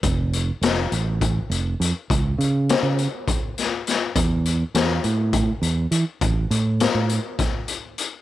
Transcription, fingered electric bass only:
\new Staff \with { instrumentName = "Fingered electric bass" } { \clef bass \time 7/8 \key e \dorian \tempo 4 = 102 f,,4 f,,8 a,,4 f,,8 f,16 r16 | cis,8 cis8. cis8 r4. r16 | e,4 e,8 a,4 e,8 e16 r16 | a,,8 a,8. a,8 r4. r16 | }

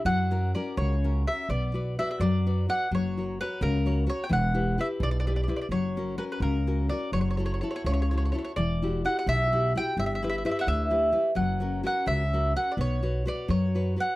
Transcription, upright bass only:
\new Staff \with { instrumentName = "Upright bass" } { \clef bass \time 6/8 \key fis \phrygian \tempo 4. = 85 fis,4. cis,4. | b,,4. fis,4. | fis,,4. cis,4. | e,,4. b,,4. |
fis,,4. cis,4. | fis,,4. cis,4. | e,,4. b,,4. | g,,4. d,4. |
fis,,4. cis,4. | b,,4. fis,4. | }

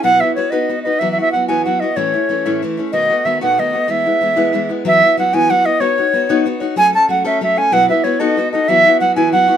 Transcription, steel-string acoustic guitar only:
\new Staff \with { instrumentName = "Steel-string acoustic guitar" } { \time 6/8 \key e \major \tempo 4. = 125 <b, fis b e' fis' b'>8 <b e' fis' b'>8 <b e' fis' b'>8 <b dis' fis' b'>8 <b dis' fis' b'>8 <dis' fis' b'>8 | <e fis b e' fis'>8 <b e' fis'>8 <fis b e' fis'>8 <e fis b e' fis'>8 <fis b e' fis'>8 <b e' fis'>8 | <a, e a cis' e'>8 <a cis' e'>8 <e a cis' e'>8 <a, e a cis' e'>8 <e a cis' e'>8 <a cis' e'>8 | <b, dis a b fis'>8 <a b fis'>8 <dis a b fis'>8 <b, dis a b fis'>8 <dis a b fis'>8 <a b fis'>8 |
<e gis b e'>8 <gis b e'>8 <e gis b e'>8 <e gis b e'>8 <e gis b e'>8 <gis b e'>8 | <e fis b e' fis'>8 <b e' fis'>8 <fis b e' fis'>8 <e fis b e' fis'>8 <fis b e' fis'>8 <b e' fis'>8 | <b dis' fis' cis''>8 <dis' fis' cis''>8 <b dis' fis' cis''>8 <b dis' fis' cis''>8 <b dis' fis' cis''>8 <dis' fis' cis''>8 | <fis a cis' a'>8 <a cis' a'>8 <fis a cis' a'>8 <fis a cis' a'>8 <fis a cis' a'>8 <a cis' a'>8 |
<b, fis b e' fis' b'>8 <b e' fis' b'>8 <b e' fis' b'>8 <b dis' fis' a'>8 <b dis' fis' a'>8 <dis' fis' a'>8 | <e fis b e' fis'>8 <b e' fis'>8 <fis b e' fis'>8 <e fis b e' fis'>8 <fis b e' fis'>8 <b e' fis'>8 | }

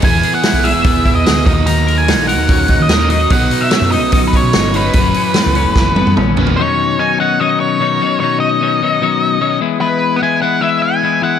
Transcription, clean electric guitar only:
\new Staff \with { instrumentName = "Clean electric guitar" } { \time 4/4 \key b \major \tempo 4 = 147 e8 gis'8 e'8 gis'8 b8 e'8 gis'8 dis8 | dis8 ais'8 dis'8 ais'8 cis'8 dis'8 ais'8 dis'8 | b,8 dis'8 cis'8 dis'8 fis8 cis'8 dis'8 cis'8 | fis,8 cis'8 b8 cis'8 e8 b8 cis'8 b8 |
<b, dis fis cis' dis'>4 <b, dis fis cis' dis'>8 <b, dis fis cis' dis'>8 <b, dis fis cis' dis'>4 <b, dis fis cis' dis'>8 <b, dis fis cis' dis'>8 | <b, dis fis cis' dis'>4 <b, dis fis cis' dis'>8 <b, dis fis cis' dis'>8 <b, dis fis cis' dis'>4 <b, dis fis cis' dis'>8 <e gis b e'>8 | <e gis b e'>4 <e gis b e'>8 <e gis b e'>8 <e gis b e'>4 <e gis b e'>8 <e gis b e'>8 | }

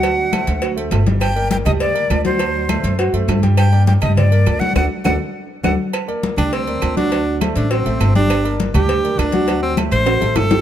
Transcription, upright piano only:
\new Staff \with { instrumentName = "Upright piano" } { \time 4/4 \key g \minor \tempo 4 = 203 <fis fis' fis''>4 <a a' c''>4 <fis fis' fis''>8 <a a' c''>4 <g g' g''>8~ | <g g' g''>8 <bes bes' d''>4 <g g' g''>4 <bes bes' d''>4 <fis fis' fis''>8 | <fis fis' fis''>4 <a a' c''>4 <fis fis' fis''>8 <a a' c''>4 <g g' g''>8~ | <g g' g''>8 <bes bes' d''>4 <g g' g''>4 <bes bes' d''>4 <fis fis' fis''>8 |
<d' fis' a'>8 r8 <d' fis' a'>8 r4. <d' fis' a'>8 r8 | r8 <bes bes' d''>4 <g g' g''>4 <bes bes' d''>4 <fis fis' fis''>8 | <fis fis' fis''>4 <a a' c''>4 <fis fis' fis''>8 <a a' c''>4 <g g' g''>8~ | <g g' g''>8 <bes bes' d''>4 <g g' g''>4 <bes bes' d''>4 <fis fis' fis''>8 |
<fis fis' fis''>4 <a a' c''>4 <fis fis' fis''>8 <a a' c''>4 <g g' g''>8 | }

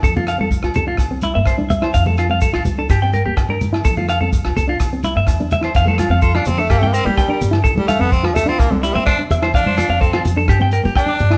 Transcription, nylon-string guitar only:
\new Staff \with { instrumentName = "Nylon-string guitar" } { \time 4/4 \key f \major \tempo 4 = 126 r16 a8 c'8 f'8 r8 c'8 bes8 d'8 e'16 | r16 a8 c'8 f'8 d'8 c'8 bes8 d'8 e'16 | r16 a8 c'8 f'8 d'8 c'8 bes8 d'8 e'16 | r16 a8 c'8 f'8 d'8 c'8 bes8 d'8 e'16 |
r16 a8 c'8 f'8 d'8 c'8 bes8 d'8 e'16 | r8. c'8 f'8 d'8 c'8 bes8 d'8 e'16 | }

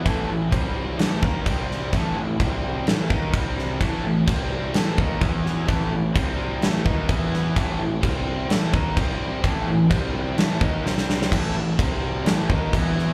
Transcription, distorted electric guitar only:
\new Staff \with { instrumentName = "Distorted electric guitar" } { \clef bass \time 4/4 \key a \minor \tempo 4 = 128 <a, e a>8 <a, e>8 <c g c'>4 <a, e a>8 <dis bes dis'>8 <c g c'>4 | <a, e a>8 <a, e>8 <c g c'>4 <a, e a>8 <dis bes dis'>8 <c g c'>4 | <a, e a>8 <a, e>8 <c g c'>4 <a, e a>8 <dis bes dis'>8 <e b e'>4 | <a, e a>8 <a, e>8 <c g c'>4 <a, e a>8 <dis bes dis'>8 <e b e'>4 |
<a, e a>8 <a, e>8 <c g c'>4 <a, e a>8 <dis bes dis'>8 <c g c'>4 | <a, e a>8 <a, e>8 <c g c'>4 <a, e a>8 <dis bes dis'>8 <c g c'>4 | <a, e a>8 <a, e>8 <c g c'>4 <a, e a>8 <dis bes dis'>8 <e b e'>4 | }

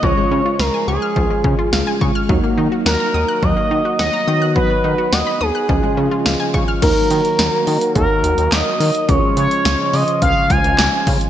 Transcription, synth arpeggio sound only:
\new Staff \with { instrumentName = "Synth arpeggio sound" } { \time 4/4 \key ees \minor \tempo 4 = 106 f16 aes16 des'16 f'16 f''16 aes''16 des'''16 f'''16 f16 aes16 des'16 f'16 f''16 aes''16 des'''16 f'''16 | ges16 bes16 ees'16 ges'16 ges''16 bes''16 ees'''16 ges'''16 ges16 bes16 ees'16 ges'16 ges''16 bes''16 dis'''16 fis'''16 | fis16 b16 dis'16 fis'16 fis''16 b''16 dis'''16 fis'''16 f16 aes16 des'16 f'16 f''16 aes''16 des'''16 f'''16 | r1 |
r1 | }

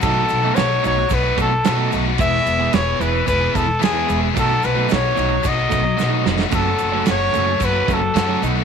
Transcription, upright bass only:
\new Staff \with { instrumentName = "Upright bass" } { \clef bass \time 4/4 \key fis \dorian \tempo 4 = 111 b,,8 b,,8 b,,8 b,,8 b,,8 b,,8 b,8 b,,8 | e,,8 e,,8 e,,8 e,,8 e,,8 e,,8 e,8 e,,8 | b,,8 b,,8 b,,8 b,,8 b,,8 b,,8 b,8 eis,,8 | fis,,8 fis,,8 fis,,8 fis,,8 fis,,8 fis,,8 fis,8 b,,8 | }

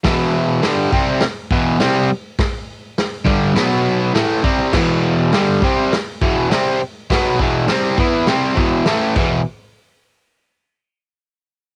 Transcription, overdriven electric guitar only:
\new Staff \with { instrumentName = "Overdriven electric guitar" } { \clef bass \time 4/4 \key e \minor \tempo 4 = 102 <e, b, e>4 <g, d g>8 <c g c'>8 r8 <e, b, e>8 <c g c'>8 r8 | r4. <g, d g>8 <b, fis b>4 <a, e a>8 <c g c'>8 | <e, b, e>4 <g, d g>8 <c g c'>8 r8 <e, b, e>8 <c g c'>8 r8 | <b, fis b>8 <e, b, e>8 <c g c'>8 <e b e'>8 <c g c'>8 <e, b, e>8 <a, e a>8 <e, b, e>8 |
r1 | }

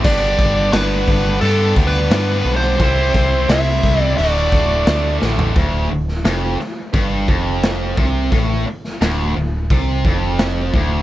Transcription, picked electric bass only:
\new Staff \with { instrumentName = "Picked electric bass" } { \clef bass \time 4/4 \key g \lydian \tempo 4 = 87 g,,8 g,,8 g,,8 g,,8 g,8 d,8 g,8 b,,8 | c,8 c,8 c,8 c,8 d,,8 d,,8 d,8 a,,8 | d,,8 d,,8 f,,8 r8 g,,8 f,,4 c,8 | a,,8 r8 d,,8 d,,8 c,8 f,,4 d,,8 | }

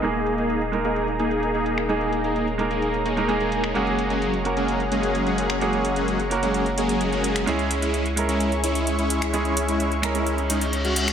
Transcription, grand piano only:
\new Staff \with { instrumentName = "Grand piano" } { \time 4/4 \key dis \phrygian \tempo 4 = 129 <gis ais dis' gis'>4. <gis ais dis' ais'>2~ <gis ais dis' ais'>8 | <gis ais dis' gis'>16 r4 r16 <gis ais dis' ais'>4~ <gis ais dis' ais'>16 <gis ais dis' ais'>16 <gis ais dis' gis'>4 | <ais cis' fis' gis'>4. <ais cis' fis' ais'>2~ <ais cis' fis' ais'>8 | <ais cis' fis' gis'>16 r4 r16 <ais cis' fis' ais'>2~ <ais cis' fis' ais'>8 |
<gis cis' e' gis'>4. <gis cis' e' ais'>2~ <gis cis' e' ais'>8 | <gis cis' e' gis'>16 r4 r16 <gis cis' e' ais'>2~ <gis cis' e' ais'>8 | }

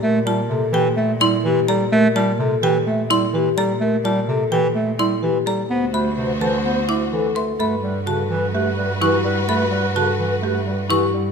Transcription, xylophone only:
\new Staff \with { instrumentName = "Xylophone" } { \time 4/4 \key bes \lydian \tempo 4 = 127 r8 a''8 r8 g''8 r8 c'''8 r8 bes''8 | r8 a''8 r8 g''8 r8 c'''8 r8 bes''8 | r8 a''8 r8 g''8 r8 c'''8 r8 bes''8 | r8 ces'''8 r8 a''8 r8 d'''8 r8 c'''8 |
\key g \lydian b''8 r8 a''8 r4. cis'''8 r8 | b''8 r8 a''8 r4. cis'''8 r8 | }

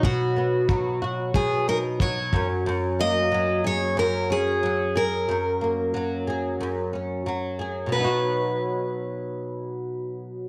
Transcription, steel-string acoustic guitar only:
\new Staff \with { instrumentName = "Steel-string acoustic guitar" } { \time 4/4 \key b \major \tempo 4 = 91 fis'2 gis'8 ais'8 cis''8. r16 | r8 dis''4 cis''8 ais'8 gis'4 ais'8~ | ais'2. r4 | b'1 | }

